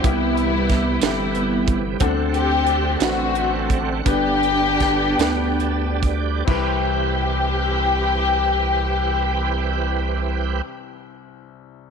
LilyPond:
<<
  \new Staff \with { instrumentName = "Grand piano" } { \time 6/8 \key c \major \tempo 4. = 50 <b e' g' b'>4 r8 <c e' g' a'>4 r8 | <c' d' a' fis''>4 r8 <c' d' fis' b'>4 r8 | <b d' g' b'>4 r8 <b d' g' b'>4 r8 | <c' e' g' b'>2.~ |
<c' e' g' b'>2. | }
  \new Staff \with { instrumentName = "Grand piano" } { \clef bass \time 6/8 \key c \major c4. r4. | d4. r4. | g,4. r4. | c,2.~ |
c,2. | }
  \new Staff \with { instrumentName = "String section" } { \time 6/8 \key c \major << { e'4. e'4 r8 | r8 g'4 fis'4 r8 | g'2~ g'8 r8 | g'2.~ |
g'2. | } \\ { <g b>4. <g b>4. | r8 c'4 <a c'>4. | <b d'>2~ <b d'>8 r8 | r2. |
r2. | } >> }
  \new Staff \with { instrumentName = "Tonewheel organ" } { \time 6/8 \key c \major r2. | r2. | r2 a''8 d''8 | r2. |
r2. | }
  \new Staff \with { instrumentName = "Tonewheel organ" } { \time 6/8 \key c \major <c e b f' g'>2. | <d a c' e' fis''>2. | <d g b g'>2. | <e c' g' b'>2.~ |
<e c' g' b'>2. | }
  \new Staff \with { instrumentName = "Analog synth bass" } { \clef bass \time 6/8 \key c \major c,4. g,,4. | d,4. a,,4. | g,,4. d,4. | c,2.~ |
c,2. | }
  \new DrumStaff \with { instrumentName = "Drums" } \drummode { \time 6/8 <hh bd>8 hh8 <hh bd sn>8 <hh sn>8 hh8 <hh bd>8 | <hh bd>8 hh8 hh8 <hh sn>8 hh8 <hh bd>8 | <hh bd>8 hh8 <hh bd sn>8 <hh sn>8 hh8 <hh bd>8 | <cymc bd>4. r4. |
r4. r4. | }
>>